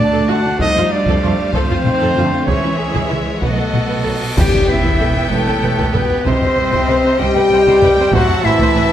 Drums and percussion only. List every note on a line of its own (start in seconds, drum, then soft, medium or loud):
0.60 taiko loud
1.06 taiko medium
1.53 taiko medium
1.84 taiko low-mid medium
2.47 taiko medium
2.95 taiko medium
3.42 taiko medium
3.74 taiko low-mid medium
4.37 concert bass drum medium
4.37 taiko loud
4.37 crash medium
4.54 taiko low medium
4.85 taiko medium
5.79 taiko medium
5.95 taiko low medium
6.26 taiko loud
6.42 taiko low medium
6.73 taiko medium
7.67 taiko medium
7.82 taiko low medium
8.13 taiko loud
8.29 taiko low medium
8.59 taiko loud